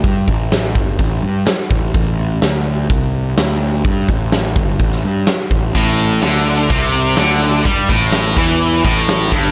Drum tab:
HH |o---o---o---o---|o---o---o---o---|o---o---o---o---|o---o---o---o---|
SD |----o-------o---|----o-------o---|----o----o--o---|----o-------o---|
BD |o-o---o-o-----o-|o-------o-------|o-o---o-o-----o-|o-------o-------|

HH |o---o---o---o---|
SD |----o----o--o--o|
BD |o-o---o---o---o-|